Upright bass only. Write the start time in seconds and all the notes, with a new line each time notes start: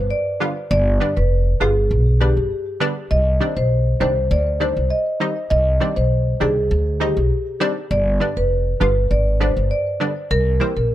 0.71 G1
1.17 F1
1.61 G1
1.91 B1
2.37 G1
3.11 C2
3.57 B1
4.01 C2
4.31 D2
4.77 C2
5.51 C2
5.97 B1
6.41 C2
6.71 D2
7.17 B1
7.91 G1
8.37 F1
8.81 G1
9.11 G#1
9.57 G1
10.31 C2
10.76 A#1